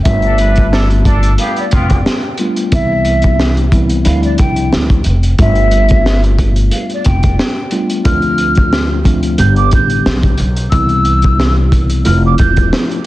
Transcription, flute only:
0.03 E5
1.39 F5
1.59 D5
1.74 G5
2.73 E5
4.06 F5
4.24 D5
4.38 G5
5.40 E5
6.72 F5
6.93 D5
7.06 G5
8.05 F6
9.39 G6
9.56 D6
9.74 G6
10.70 E6
12.06 F6
12.26 D6
12.38 G6

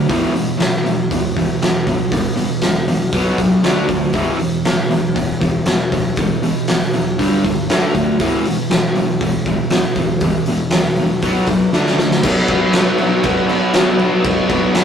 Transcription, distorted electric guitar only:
0.08 E2 B2 E3
0.36 E2 B2
0.58 E2 B2
0.85 E2 B2
1.12 E2 B2
1.38 E2 B2
1.62 E2 B2
1.88 E2 B2
2.13 E2 B2
2.36 E2 B2
2.63 E2 B2
2.88 E2 B2
3.14 B2 F#3 B3
3.39 B2 F#3
3.64 D3 A3 D4
3.88 D3 A3
4.13 E2 B2 E3
4.38 E2 B2
4.65 E2 B2
4.89 E2 B2
5.15 E2 B2
5.40 E2 B2
5.67 E2 B2
5.92 E2 B2
6.19 E2 B2
6.42 E2 B2
6.69 E2 B2
6.94 E2 B2
7.19 G2 D3 G3
7.44 G2 D3
7.70 D3 A3 D4
7.94 D3 A3
8.20 E2 B2 E3
8.47 E2 B2
8.71 E2 B2
8.96 E2 B2
9.21 E2 B2
9.47 E2 B2
9.72 E2 B2
9.98 E2 B2
10.23 E2 B2
10.48 E2 B2
10.73 E2 B2
11.00 E2 B2
11.23 B2 F#3 B3
11.49 B2 F#3
11.73 D3 A3 D4
11.99 D3 A3
12.23 B2 F#3
12.28 B3
12.49 B3
12.53 F#3
12.72 B2 F#3
12.77 B3
12.98 F#3 B3
13.02 B2
13.22 B2 F#3
13.26 B3
13.47 F#3 B3
13.74 B2 F#3
13.79 B3
13.98 B3
14.03 F#3
14.23 B2 F#3 B3
14.48 B3
14.53 F#3
14.73 B2 F#3 B3

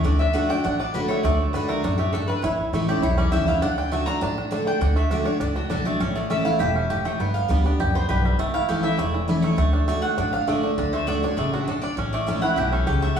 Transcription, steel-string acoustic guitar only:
0.04 D3
0.33 D3 A3 D4 F#4
0.49 D4 F#4
0.64 A2
0.94 D3 A3 D4 F#4
1.25 D3
1.54 D3 A3 D4 F#4
1.70 D4 F#4
1.84 F#2
2.15 G2
2.44 A2
2.73 E3 A3 C#4 E4
2.88 C#4 E4
3.03 E2
3.32 E3 A3 C#4 E4
3.48 C#4 E4
3.62 D3
3.91 D3 A3 D4 F#4
4.07 D4 F#4
4.21 A2
4.51 D3 A3 D4 F#4
4.81 D3
5.11 D3 A3 D4 F#4
5.26 D4 F#4
5.41 A2
5.70 D3 A3 D4 F#4
5.85 D4 F#4
6.01 A2
6.30 E3 A3 C#4 E4
6.60 B2
6.90 A2
7.20 G2
7.48 G3 B3 D4 G4
7.64 D4 G4
7.80 F#2
8.09 G2
8.39 A2
8.68 E3 A3 C#4 E4
8.99 E2
9.28 E3 A3 C#4 E4
9.58 D3
9.88 D3 A3 D4 F#4
10.18 A2
10.47 D3 A3 D4 F#4
10.78 D3
11.07 D3 A3 D4 F#4
11.23 D4 F#4
11.38 C#3
11.68 B2
11.97 A2
12.27 E3 A3 C#4 E4
12.57 B2
12.87 C#3
13.17 D3

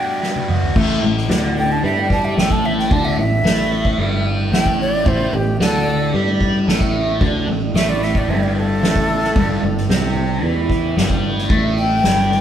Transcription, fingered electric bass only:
0.76 A1
1.03 A1
1.30 D2
1.83 G2
2.37 A1
2.91 D2
3.17 A1
3.44 A1
3.98 G1
4.52 A1
5.06 A1
5.33 A1
5.60 D2
6.14 G2
6.68 A1
7.21 D2
7.47 A1
7.74 A1
8.28 G1
8.82 A1
9.35 G1
9.63 G1
9.89 C2
10.43 E2
10.97 G1
11.50 A1
12.04 G1

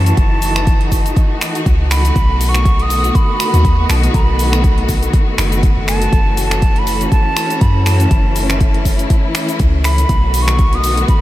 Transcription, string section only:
Already playing: E3 A3 C#4 F#4
0.17 D#4
2.16 D#3 B3
6.13 E3 C#4
8.11 E4
10.09 D#3 A3 B3 F#4

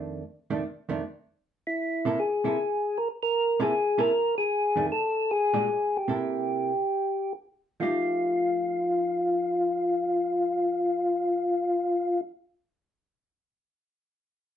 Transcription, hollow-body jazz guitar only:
Already playing: F2 D#3 A3 D4
0.50 F2 D#3 A3 D4
0.89 F2 D#3 A3 D4
2.05 C3 A#3 E4 A4
2.44 C3 A#3 E4 A4
3.60 C3 A#3 E4 A4
3.98 C3 A#3 E4 A4
4.76 F2 D#3 A3 D4
5.53 A#2 G#3 D4 G4
6.08 C3 A#3 E4 A4
7.80 F3 A3 D#4 G4

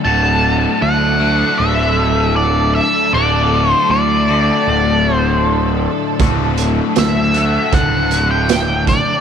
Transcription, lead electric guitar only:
0.05 A5
0.82 F#5
1.58 E5
2.36 D5
2.75 E5
3.14 D5
3.71 C5
3.91 D5
5.13 C5
6.99 E5
7.74 F#5
8.31 G5
8.88 D5

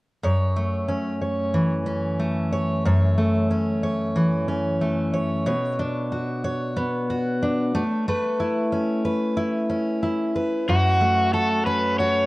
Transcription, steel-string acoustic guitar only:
0.23 F#2 C#5
0.56 A3
0.88 C#4
1.21 C#5
1.54 E3
1.86 C#4
2.20 A3
2.53 C#5
2.85 F#2 C#5
3.18 A3
3.51 C#4
3.83 C#5
4.15 E3
4.48 C#4
4.81 A3
5.13 C#5
5.46 B2 C#5
5.79 D4
6.12 F#4
6.44 C#5
6.76 B3
7.10 F#4
7.42 D4
7.74 A3
8.08 A3 B4
8.40 E4
8.72 C#4
9.05 B4
9.37 E4
9.70 C#4
10.03 E4
10.36 B4
10.69 F#2
11.01 A3
11.34 F#4
11.67 C#4
12.00 F#4

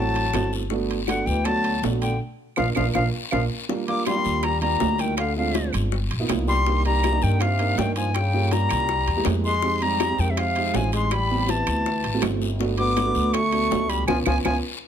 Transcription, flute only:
Already playing: A5
1.08 F#5
1.26 G5
1.45 A5
2.01 G5
2.57 F5
2.76 F5
2.95 F5
3.31 F5
3.88 D6
4.06 C6
4.44 A#5
4.61 A#5
5.00 G5
5.18 F5
5.37 F5
6.48 C6
6.86 A#5
7.23 G5
7.41 F5
7.78 G5
7.96 G#5
8.14 G5
8.52 A#5
9.45 C6
9.82 A#5
10.20 G5
10.30 E5
10.38 F5
10.76 G#5
10.95 C6
11.13 B5
11.50 A5
12.78 D6
13.33 C#6
13.89 B5
14.07 G#5
14.27 G#5
14.45 G#5

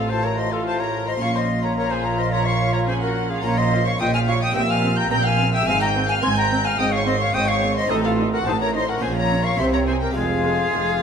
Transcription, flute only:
Already playing: A4
0.09 C5
0.24 C#5
0.39 D#5
0.52 A4
0.66 C5
0.80 C#5
1.07 D#5
1.22 F5
1.36 D#5
1.64 C#5
1.77 C#5
1.91 C5
2.05 C#5
2.18 D#5
2.32 C#5
2.46 F5
2.73 C#5
2.88 C5
3.01 A#4
3.29 G#4
3.44 C#5
3.58 D#5
3.86 F5
4.00 G5
4.14 G#5
4.28 F5
4.41 G5
4.55 G5
4.70 G#5
4.97 A#5
5.11 A#5
5.25 G#5
5.53 G5
5.67 G#5
5.81 A#5
6.09 G#5
6.23 C6
6.37 A#5
6.65 G#5
6.79 G5
6.92 F5
7.06 D#5
7.20 F5
7.34 G5
7.48 F5
7.76 D#5
7.90 A4
8.04 A4
8.32 A#4
8.46 C5
8.60 C#5
8.74 D#5
8.88 A#4
9.02 C5
9.16 C#5
9.44 F5
9.58 E5
9.72 C#5
9.87 C5
10.02 A#4
10.15 G#4

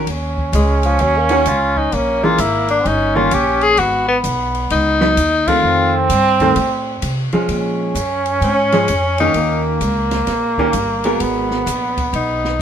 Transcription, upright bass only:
0.07 D#2
0.53 C#2
1.00 D#2
1.46 C#2
1.93 A#1
2.38 G#1
2.85 G1
3.32 A#1
3.78 G#1
4.24 B1
4.71 C#2
5.17 D#2
5.63 F2
6.10 G2
6.56 A2
7.02 C3
7.33 muted upright bass stroke
7.48 A#2
7.95 F#2
8.41 G#2
8.88 F2
9.34 D#2
9.81 C#2
10.28 A#1
10.74 G1
11.20 G#1
11.66 A#1
12.13 B1

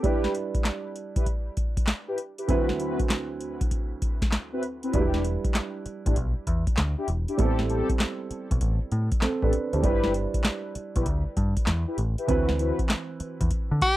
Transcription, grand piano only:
0.03 G3 D4 E4 B4
2.48 D2 F#3 C4 E4 B4
4.93 F#3 D4 E4 B4
4.99 G3
7.38 G3 B3 E4 A4
7.45 C4
9.22 C4 A4
9.43 D4 B4
9.73 E4 C5
9.83 G3 D4 E4 B4
12.27 E3 C4 E4 B4

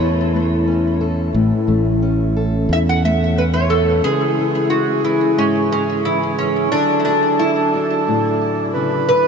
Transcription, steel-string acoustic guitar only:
Already playing: A2 A3 C#4
0.00 E4
0.34 A3
0.67 C#4
1.01 A4
1.35 A2
1.67 A3
2.02 C#4
2.37 A4
2.71 E4
3.04 A3
3.37 C#4
3.71 A4
4.04 C#3 E3 E4
4.39 E4
4.71 E4
5.04 E3
5.37 G#2
5.72 G#4
6.06 E3
6.39 E3
6.72 D3 A4
7.07 F#4
7.40 D4
7.75 D4
8.08 A2
8.76 C#3
9.09 D3

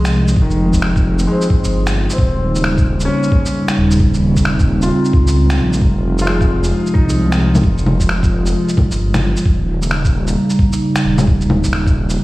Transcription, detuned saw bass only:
Already playing: C2
0.13 C2
0.36 F1
1.64 G1
2.18 D#1
3.77 D#1
4.00 D#1
5.14 C#2
5.59 A#1
5.82 F1
6.95 C2
7.41 C2
7.64 F1
8.91 G1
9.45 D#1
11.04 D#1
11.27 D#1

